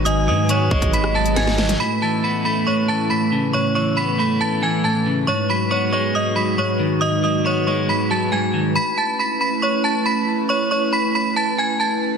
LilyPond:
<<
  \new Staff \with { instrumentName = "Synth bell" } { \time 4/4 \key a \lydian \tempo 4 = 138 <dis'' dis'''>8 <dis'' dis'''>8 <cis'' cis'''>8 <cis'' cis'''>8 <b'' b'''>8 <a'' a'''>8 <gis'' gis'''>8 r8 | <b'' b'''>8 <a'' a'''>8 <b'' b'''>8 <b'' b'''>8 <cis'' cis'''>8 <a'' a'''>8 <b'' b'''>8 r8 | <cis'' cis'''>8 <cis'' cis'''>8 <b'' b'''>8 <b'' b'''>8 <a'' a'''>8 <gis'' gis'''>8 <a'' a'''>8 r8 | <cis'' cis'''>8 <b'' b'''>8 <cis'' cis'''>8 <cis'' cis'''>8 <dis'' dis'''>8 <b'' b'''>8 <cis'' cis'''>8 r8 |
<dis'' dis'''>8 <dis'' dis'''>8 <cis'' cis'''>8 <cis'' cis'''>8 <b'' b'''>8 <a'' a'''>8 <gis'' gis'''>8 r8 | <b'' b'''>8 <a'' a'''>8 <b'' b'''>8 <b'' b'''>8 <cis'' cis'''>8 <a'' a'''>8 <b'' b'''>8 r8 | <cis'' cis'''>8 <cis'' cis'''>8 <b'' b'''>8 <b'' b'''>8 <a'' a'''>8 <gis'' gis'''>8 <a'' a'''>8 r8 | }
  \new Staff \with { instrumentName = "Soft synth lead" } { \time 4/4 \key a \lydian gis''4. dis''2~ dis''8 | r1 | r1 | r1 |
r1 | r1 | r1 | }
  \new Staff \with { instrumentName = "Analog synth pad" } { \time 4/4 \key a \lydian << { b'1 | b'1~ | b'1~ | b'1~ |
b'1 | b'1~ | b'1 | } \\ { <gis dis' fis'>1 | <a cis' e'>1~ | <a cis' e'>1 | <gis dis' fis'>1~ |
<gis dis' fis'>1 | <a cis' e'>1~ | <a cis' e'>1 | } >> }
  \new Staff \with { instrumentName = "Clean electric guitar" } { \clef bass \time 4/4 \key a \lydian <gis, dis fis>8 fis8 b8 gis8 gis,8 fis8 gis,8 dis8 | a,8 e8 b8 a8 a,8 e8 a,8 cis8 | a,8 e8 b8 a8 a,8 e8 a,8 cis8 | gis,8 fis8 b8 gis8 gis,8 fis8 gis,8 dis8 |
gis,8 fis8 b8 gis8 gis,8 fis8 gis,8 dis8 | r1 | r1 | }
  \new Staff \with { instrumentName = "808-style bass" } { \clef bass \time 4/4 \key a \lydian gis,,8 gis,4 gis,,16 gis,,2~ gis,,16 | r1 | r1 | r1 |
r1 | r1 | r1 | }
  \new DrumStaff \with { instrumentName = "Drums" } \drummode { \time 4/4 hh4 hh8 bd16 <hh bd>16 hh16 ss8 hh16 <hh sn>16 sn16 sn16 <hh sn>16 | r4 r4 r4 r4 | r4 r4 r4 r4 | r4 r4 r4 r4 |
r4 r4 r4 r4 | r4 r4 r4 r4 | r4 r4 r4 r4 | }
>>